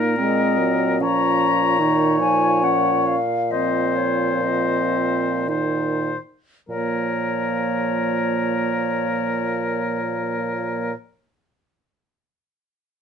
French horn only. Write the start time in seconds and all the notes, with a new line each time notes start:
Already playing: A#3
0.19 G#3
0.59 F#3
1.01 F3
1.80 D#3
2.21 F3
3.51 F3
5.48 D#3
6.69 F3